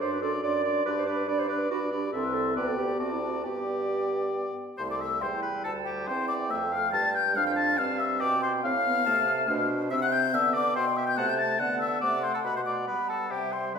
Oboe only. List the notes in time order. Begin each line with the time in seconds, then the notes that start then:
0.01 D5
0.22 D5
0.43 D5
0.64 D5
0.86 D5
1.07 D5
1.28 D5
1.49 D5
1.71 D5
1.92 D5
2.13 E5
2.57 D5
3.00 D5
3.44 D5
4.78 C5
4.90 D5
5.02 E5
5.23 C5
5.43 B4
5.64 A4
5.86 G4
6.08 C5
6.28 D5
6.51 E5
6.73 F5
6.94 A5
7.15 G5
7.36 F5
7.47 G5
7.56 A5
7.78 F5
7.99 E5
8.21 D5
8.43 C5
8.65 F5
9.91 E5
10.02 F#5
10.12 G5
10.34 E5
10.54 D5
10.76 C5
10.98 E5
11.07 G5
11.18 F#5
11.28 G5
11.39 A5
11.59 F#5
11.82 E5
12.01 D5
12.24 C5
12.34 A4
12.45 B4
12.56 C5
12.66 D5
12.88 B4
13.10 A4
13.31 G4
13.52 C5
13.75 B4